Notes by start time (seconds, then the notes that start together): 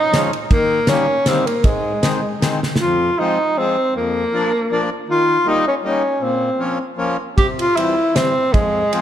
Already playing: D#4
0.12 F3 G#3 C#4, snare, ride
0.33 ride
0.51 D#3 A#3, kick, ride
0.87 D#3 G3 A#3 C#4, snare, ride
1.26 D#3 G3 A#3 C4, snare, ride
1.47 A#3, ride
1.64 G#2 G#3, kick, ride
2.01 D#3 G#3 C4, snare, ride
2.40 D#3 G#3 C4, snare, ride
2.63 snare
2.76 snare
2.80 F2 F4
3.19 F3 G#3 C4 D#4
3.57 F3 G#3 C4
3.96 F2 A#3
4.33 F3 A#3 D4
4.71 F3 A#3 D4
5.08 D#3 F4
5.45 G3 A#3 D#4
5.67 C#4
5.84 G3 A#3 C#4 D#4
6.20 A#2 C4
6.59 F3 A#3 C#4
6.97 F3 A#3 C#4
7.38 C3 G4, kick, ride
7.59 F4, ride
7.75 E3 G3 C4 E4, ride
8.14 E3 G3 C4, snare, ride
8.53 F2 G#3, kick, ride
8.92 F3 G#3 C4, ride